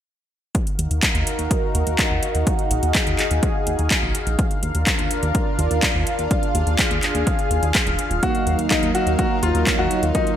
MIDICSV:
0, 0, Header, 1, 6, 480
1, 0, Start_track
1, 0, Key_signature, -6, "minor"
1, 0, Tempo, 480000
1, 548, Time_signature, 4, 2, 24, 8
1, 10364, End_track
2, 0, Start_track
2, 0, Title_t, "Analog synth pad"
2, 0, Program_c, 0, 89
2, 547, Note_on_c, 0, 70, 70
2, 548, Note_on_c, 0, 63, 79
2, 548, Note_on_c, 0, 66, 72
2, 548, Note_on_c, 0, 77, 88
2, 2448, Note_off_c, 0, 70, 0
2, 2468, Note_on_c, 0, 68, 73
2, 4349, Note_off_c, 0, 63, 0
2, 4349, Note_off_c, 0, 66, 0
2, 4369, Note_off_c, 0, 68, 0
2, 4388, Note_on_c, 0, 70, 75
2, 4389, Note_on_c, 0, 62, 81
2, 4390, Note_on_c, 0, 65, 74
2, 6289, Note_off_c, 0, 70, 0
2, 6308, Note_on_c, 0, 68, 73
2, 8190, Note_off_c, 0, 62, 0
2, 8190, Note_off_c, 0, 65, 0
2, 8208, Note_off_c, 0, 68, 0
2, 8227, Note_on_c, 0, 63, 79
2, 8227, Note_on_c, 0, 70, 73
2, 8228, Note_on_c, 0, 54, 74
2, 10128, Note_off_c, 0, 70, 0
2, 10148, Note_on_c, 0, 68, 73
2, 10364, Note_off_c, 0, 54, 0
2, 10364, Note_off_c, 0, 63, 0
2, 10364, Note_off_c, 0, 68, 0
2, 10364, Note_off_c, 0, 77, 0
2, 10364, End_track
3, 0, Start_track
3, 0, Title_t, "Grand piano"
3, 0, Program_c, 1, 0
3, 8229, Note_on_c, 1, 66, 93
3, 8539, Note_off_c, 1, 66, 0
3, 8706, Note_on_c, 1, 63, 81
3, 8862, Note_off_c, 1, 63, 0
3, 8946, Note_on_c, 1, 66, 85
3, 9102, Note_off_c, 1, 66, 0
3, 9185, Note_on_c, 1, 66, 83
3, 9342, Note_off_c, 1, 66, 0
3, 9427, Note_on_c, 1, 65, 87
3, 9660, Note_off_c, 1, 65, 0
3, 9786, Note_on_c, 1, 66, 87
3, 10020, Note_off_c, 1, 66, 0
3, 10147, Note_on_c, 1, 63, 93
3, 10364, Note_off_c, 1, 63, 0
3, 10364, End_track
4, 0, Start_track
4, 0, Title_t, "Analog polysynth"
4, 0, Program_c, 2, 90
4, 8228, Note_on_c, 2, 54, 92
4, 8229, Note_on_c, 2, 58, 82
4, 8229, Note_on_c, 2, 63, 83
4, 8229, Note_on_c, 2, 77, 101
4, 9879, Note_off_c, 2, 54, 0
4, 9879, Note_off_c, 2, 58, 0
4, 9879, Note_off_c, 2, 63, 0
4, 9879, Note_off_c, 2, 77, 0
4, 9907, Note_on_c, 2, 54, 84
4, 9907, Note_on_c, 2, 58, 77
4, 9908, Note_on_c, 2, 63, 79
4, 9908, Note_on_c, 2, 65, 90
4, 10119, Note_off_c, 2, 54, 0
4, 10119, Note_off_c, 2, 58, 0
4, 10119, Note_off_c, 2, 63, 0
4, 10119, Note_off_c, 2, 65, 0
4, 10148, Note_on_c, 2, 54, 89
4, 10148, Note_on_c, 2, 58, 86
4, 10148, Note_on_c, 2, 63, 82
4, 10148, Note_on_c, 2, 65, 103
4, 10364, Note_off_c, 2, 54, 0
4, 10364, Note_off_c, 2, 58, 0
4, 10364, Note_off_c, 2, 63, 0
4, 10364, Note_off_c, 2, 65, 0
4, 10364, End_track
5, 0, Start_track
5, 0, Title_t, "Analog synth bass"
5, 0, Program_c, 3, 38
5, 788, Note_on_c, 3, 39, 91
5, 884, Note_off_c, 3, 39, 0
5, 908, Note_on_c, 3, 39, 77
5, 1004, Note_off_c, 3, 39, 0
5, 1147, Note_on_c, 3, 39, 73
5, 1244, Note_off_c, 3, 39, 0
5, 1388, Note_on_c, 3, 39, 77
5, 1484, Note_off_c, 3, 39, 0
5, 1747, Note_on_c, 3, 39, 87
5, 1844, Note_off_c, 3, 39, 0
5, 1866, Note_on_c, 3, 39, 79
5, 1963, Note_off_c, 3, 39, 0
5, 2107, Note_on_c, 3, 39, 72
5, 2203, Note_off_c, 3, 39, 0
5, 2348, Note_on_c, 3, 39, 77
5, 2444, Note_off_c, 3, 39, 0
5, 2707, Note_on_c, 3, 34, 89
5, 2804, Note_off_c, 3, 34, 0
5, 2829, Note_on_c, 3, 39, 76
5, 2924, Note_off_c, 3, 39, 0
5, 3071, Note_on_c, 3, 39, 74
5, 3165, Note_off_c, 3, 39, 0
5, 3309, Note_on_c, 3, 39, 81
5, 3405, Note_off_c, 3, 39, 0
5, 3669, Note_on_c, 3, 39, 85
5, 3764, Note_off_c, 3, 39, 0
5, 3791, Note_on_c, 3, 39, 80
5, 3885, Note_off_c, 3, 39, 0
5, 4029, Note_on_c, 3, 34, 70
5, 4125, Note_off_c, 3, 34, 0
5, 4268, Note_on_c, 3, 34, 77
5, 4364, Note_off_c, 3, 34, 0
5, 4628, Note_on_c, 3, 39, 90
5, 4724, Note_off_c, 3, 39, 0
5, 4748, Note_on_c, 3, 39, 79
5, 4844, Note_off_c, 3, 39, 0
5, 4987, Note_on_c, 3, 39, 75
5, 5084, Note_off_c, 3, 39, 0
5, 5228, Note_on_c, 3, 39, 78
5, 5324, Note_off_c, 3, 39, 0
5, 5587, Note_on_c, 3, 39, 88
5, 5684, Note_off_c, 3, 39, 0
5, 5707, Note_on_c, 3, 39, 79
5, 5804, Note_off_c, 3, 39, 0
5, 5947, Note_on_c, 3, 39, 73
5, 6044, Note_off_c, 3, 39, 0
5, 6188, Note_on_c, 3, 39, 78
5, 6284, Note_off_c, 3, 39, 0
5, 6547, Note_on_c, 3, 39, 91
5, 6644, Note_off_c, 3, 39, 0
5, 6667, Note_on_c, 3, 39, 76
5, 6764, Note_off_c, 3, 39, 0
5, 6906, Note_on_c, 3, 39, 74
5, 7003, Note_off_c, 3, 39, 0
5, 7147, Note_on_c, 3, 39, 78
5, 7244, Note_off_c, 3, 39, 0
5, 7507, Note_on_c, 3, 39, 89
5, 7603, Note_off_c, 3, 39, 0
5, 7627, Note_on_c, 3, 39, 81
5, 7724, Note_off_c, 3, 39, 0
5, 7867, Note_on_c, 3, 27, 74
5, 7964, Note_off_c, 3, 27, 0
5, 8107, Note_on_c, 3, 27, 80
5, 8203, Note_off_c, 3, 27, 0
5, 8466, Note_on_c, 3, 39, 93
5, 8563, Note_off_c, 3, 39, 0
5, 8588, Note_on_c, 3, 39, 78
5, 8684, Note_off_c, 3, 39, 0
5, 8826, Note_on_c, 3, 39, 74
5, 8923, Note_off_c, 3, 39, 0
5, 9067, Note_on_c, 3, 39, 79
5, 9163, Note_off_c, 3, 39, 0
5, 9427, Note_on_c, 3, 39, 87
5, 9524, Note_off_c, 3, 39, 0
5, 9546, Note_on_c, 3, 39, 79
5, 9643, Note_off_c, 3, 39, 0
5, 9787, Note_on_c, 3, 39, 72
5, 9883, Note_off_c, 3, 39, 0
5, 10027, Note_on_c, 3, 39, 76
5, 10124, Note_off_c, 3, 39, 0
5, 10364, End_track
6, 0, Start_track
6, 0, Title_t, "Drums"
6, 548, Note_on_c, 9, 36, 112
6, 548, Note_on_c, 9, 42, 75
6, 648, Note_off_c, 9, 36, 0
6, 648, Note_off_c, 9, 42, 0
6, 669, Note_on_c, 9, 42, 35
6, 769, Note_off_c, 9, 42, 0
6, 788, Note_on_c, 9, 42, 76
6, 888, Note_off_c, 9, 42, 0
6, 908, Note_on_c, 9, 42, 49
6, 1008, Note_off_c, 9, 42, 0
6, 1028, Note_on_c, 9, 36, 96
6, 1028, Note_on_c, 9, 39, 110
6, 1028, Note_on_c, 9, 42, 74
6, 1128, Note_off_c, 9, 36, 0
6, 1128, Note_off_c, 9, 39, 0
6, 1128, Note_off_c, 9, 42, 0
6, 1149, Note_on_c, 9, 42, 36
6, 1249, Note_off_c, 9, 42, 0
6, 1269, Note_on_c, 9, 42, 77
6, 1369, Note_off_c, 9, 42, 0
6, 1388, Note_on_c, 9, 42, 51
6, 1488, Note_off_c, 9, 42, 0
6, 1508, Note_on_c, 9, 36, 108
6, 1508, Note_on_c, 9, 42, 77
6, 1608, Note_off_c, 9, 36, 0
6, 1608, Note_off_c, 9, 42, 0
6, 1748, Note_on_c, 9, 42, 78
6, 1848, Note_off_c, 9, 42, 0
6, 1867, Note_on_c, 9, 42, 51
6, 1967, Note_off_c, 9, 42, 0
6, 1987, Note_on_c, 9, 39, 110
6, 1987, Note_on_c, 9, 42, 75
6, 1988, Note_on_c, 9, 36, 98
6, 2087, Note_off_c, 9, 39, 0
6, 2087, Note_off_c, 9, 42, 0
6, 2088, Note_off_c, 9, 36, 0
6, 2227, Note_on_c, 9, 42, 75
6, 2327, Note_off_c, 9, 42, 0
6, 2347, Note_on_c, 9, 42, 51
6, 2447, Note_off_c, 9, 42, 0
6, 2467, Note_on_c, 9, 42, 74
6, 2468, Note_on_c, 9, 36, 114
6, 2567, Note_off_c, 9, 42, 0
6, 2568, Note_off_c, 9, 36, 0
6, 2587, Note_on_c, 9, 42, 35
6, 2687, Note_off_c, 9, 42, 0
6, 2708, Note_on_c, 9, 42, 76
6, 2808, Note_off_c, 9, 42, 0
6, 2828, Note_on_c, 9, 42, 51
6, 2928, Note_off_c, 9, 42, 0
6, 2948, Note_on_c, 9, 36, 101
6, 2948, Note_on_c, 9, 39, 107
6, 2948, Note_on_c, 9, 42, 72
6, 3048, Note_off_c, 9, 36, 0
6, 3048, Note_off_c, 9, 39, 0
6, 3048, Note_off_c, 9, 42, 0
6, 3068, Note_on_c, 9, 42, 36
6, 3168, Note_off_c, 9, 42, 0
6, 3188, Note_on_c, 9, 39, 60
6, 3188, Note_on_c, 9, 42, 73
6, 3288, Note_off_c, 9, 39, 0
6, 3288, Note_off_c, 9, 42, 0
6, 3308, Note_on_c, 9, 42, 50
6, 3408, Note_off_c, 9, 42, 0
6, 3428, Note_on_c, 9, 36, 112
6, 3428, Note_on_c, 9, 42, 75
6, 3528, Note_off_c, 9, 36, 0
6, 3528, Note_off_c, 9, 42, 0
6, 3668, Note_on_c, 9, 42, 73
6, 3768, Note_off_c, 9, 42, 0
6, 3788, Note_on_c, 9, 42, 48
6, 3888, Note_off_c, 9, 42, 0
6, 3908, Note_on_c, 9, 36, 102
6, 3908, Note_on_c, 9, 39, 117
6, 3908, Note_on_c, 9, 42, 74
6, 4008, Note_off_c, 9, 36, 0
6, 4008, Note_off_c, 9, 39, 0
6, 4008, Note_off_c, 9, 42, 0
6, 4148, Note_on_c, 9, 42, 75
6, 4248, Note_off_c, 9, 42, 0
6, 4268, Note_on_c, 9, 42, 50
6, 4368, Note_off_c, 9, 42, 0
6, 4387, Note_on_c, 9, 42, 68
6, 4388, Note_on_c, 9, 36, 113
6, 4487, Note_off_c, 9, 42, 0
6, 4488, Note_off_c, 9, 36, 0
6, 4508, Note_on_c, 9, 42, 32
6, 4608, Note_off_c, 9, 42, 0
6, 4627, Note_on_c, 9, 42, 73
6, 4727, Note_off_c, 9, 42, 0
6, 4747, Note_on_c, 9, 42, 49
6, 4847, Note_off_c, 9, 42, 0
6, 4867, Note_on_c, 9, 39, 113
6, 4867, Note_on_c, 9, 42, 71
6, 4868, Note_on_c, 9, 36, 103
6, 4967, Note_off_c, 9, 39, 0
6, 4967, Note_off_c, 9, 42, 0
6, 4968, Note_off_c, 9, 36, 0
6, 4987, Note_on_c, 9, 42, 34
6, 5087, Note_off_c, 9, 42, 0
6, 5107, Note_on_c, 9, 42, 72
6, 5207, Note_off_c, 9, 42, 0
6, 5227, Note_on_c, 9, 42, 49
6, 5327, Note_off_c, 9, 42, 0
6, 5347, Note_on_c, 9, 42, 74
6, 5348, Note_on_c, 9, 36, 119
6, 5447, Note_off_c, 9, 42, 0
6, 5448, Note_off_c, 9, 36, 0
6, 5588, Note_on_c, 9, 42, 72
6, 5688, Note_off_c, 9, 42, 0
6, 5708, Note_on_c, 9, 42, 46
6, 5808, Note_off_c, 9, 42, 0
6, 5828, Note_on_c, 9, 36, 104
6, 5828, Note_on_c, 9, 39, 118
6, 5828, Note_on_c, 9, 42, 71
6, 5928, Note_off_c, 9, 36, 0
6, 5928, Note_off_c, 9, 39, 0
6, 5928, Note_off_c, 9, 42, 0
6, 6068, Note_on_c, 9, 42, 72
6, 6168, Note_off_c, 9, 42, 0
6, 6188, Note_on_c, 9, 42, 50
6, 6288, Note_off_c, 9, 42, 0
6, 6308, Note_on_c, 9, 36, 110
6, 6308, Note_on_c, 9, 42, 68
6, 6408, Note_off_c, 9, 36, 0
6, 6408, Note_off_c, 9, 42, 0
6, 6429, Note_on_c, 9, 42, 32
6, 6529, Note_off_c, 9, 42, 0
6, 6548, Note_on_c, 9, 42, 70
6, 6648, Note_off_c, 9, 42, 0
6, 6669, Note_on_c, 9, 42, 47
6, 6769, Note_off_c, 9, 42, 0
6, 6788, Note_on_c, 9, 36, 101
6, 6788, Note_on_c, 9, 39, 115
6, 6788, Note_on_c, 9, 42, 68
6, 6888, Note_off_c, 9, 36, 0
6, 6888, Note_off_c, 9, 39, 0
6, 6888, Note_off_c, 9, 42, 0
6, 6908, Note_on_c, 9, 42, 32
6, 7008, Note_off_c, 9, 42, 0
6, 7028, Note_on_c, 9, 39, 60
6, 7028, Note_on_c, 9, 42, 67
6, 7127, Note_off_c, 9, 39, 0
6, 7127, Note_off_c, 9, 42, 0
6, 7148, Note_on_c, 9, 42, 45
6, 7248, Note_off_c, 9, 42, 0
6, 7268, Note_on_c, 9, 36, 115
6, 7268, Note_on_c, 9, 42, 73
6, 7368, Note_off_c, 9, 36, 0
6, 7368, Note_off_c, 9, 42, 0
6, 7388, Note_on_c, 9, 42, 33
6, 7488, Note_off_c, 9, 42, 0
6, 7508, Note_on_c, 9, 42, 72
6, 7608, Note_off_c, 9, 42, 0
6, 7627, Note_on_c, 9, 42, 47
6, 7727, Note_off_c, 9, 42, 0
6, 7747, Note_on_c, 9, 39, 117
6, 7747, Note_on_c, 9, 42, 73
6, 7748, Note_on_c, 9, 36, 103
6, 7847, Note_off_c, 9, 39, 0
6, 7847, Note_off_c, 9, 42, 0
6, 7848, Note_off_c, 9, 36, 0
6, 7867, Note_on_c, 9, 42, 33
6, 7967, Note_off_c, 9, 42, 0
6, 7987, Note_on_c, 9, 42, 72
6, 8087, Note_off_c, 9, 42, 0
6, 8107, Note_on_c, 9, 42, 48
6, 8207, Note_off_c, 9, 42, 0
6, 8227, Note_on_c, 9, 42, 72
6, 8228, Note_on_c, 9, 36, 108
6, 8327, Note_off_c, 9, 42, 0
6, 8328, Note_off_c, 9, 36, 0
6, 8347, Note_on_c, 9, 42, 33
6, 8447, Note_off_c, 9, 42, 0
6, 8468, Note_on_c, 9, 42, 69
6, 8567, Note_off_c, 9, 42, 0
6, 8588, Note_on_c, 9, 42, 47
6, 8688, Note_off_c, 9, 42, 0
6, 8707, Note_on_c, 9, 39, 108
6, 8707, Note_on_c, 9, 42, 68
6, 8708, Note_on_c, 9, 36, 98
6, 8807, Note_off_c, 9, 39, 0
6, 8807, Note_off_c, 9, 42, 0
6, 8808, Note_off_c, 9, 36, 0
6, 8828, Note_on_c, 9, 42, 34
6, 8928, Note_off_c, 9, 42, 0
6, 8947, Note_on_c, 9, 42, 71
6, 9047, Note_off_c, 9, 42, 0
6, 9068, Note_on_c, 9, 42, 46
6, 9168, Note_off_c, 9, 42, 0
6, 9188, Note_on_c, 9, 36, 107
6, 9188, Note_on_c, 9, 42, 70
6, 9288, Note_off_c, 9, 36, 0
6, 9288, Note_off_c, 9, 42, 0
6, 9427, Note_on_c, 9, 42, 71
6, 9527, Note_off_c, 9, 42, 0
6, 9548, Note_on_c, 9, 42, 48
6, 9648, Note_off_c, 9, 42, 0
6, 9668, Note_on_c, 9, 36, 103
6, 9668, Note_on_c, 9, 39, 116
6, 9668, Note_on_c, 9, 42, 72
6, 9768, Note_off_c, 9, 36, 0
6, 9768, Note_off_c, 9, 39, 0
6, 9768, Note_off_c, 9, 42, 0
6, 9908, Note_on_c, 9, 42, 70
6, 10008, Note_off_c, 9, 42, 0
6, 10028, Note_on_c, 9, 42, 49
6, 10128, Note_off_c, 9, 42, 0
6, 10147, Note_on_c, 9, 42, 72
6, 10148, Note_on_c, 9, 36, 102
6, 10247, Note_off_c, 9, 42, 0
6, 10248, Note_off_c, 9, 36, 0
6, 10268, Note_on_c, 9, 42, 35
6, 10364, Note_off_c, 9, 42, 0
6, 10364, End_track
0, 0, End_of_file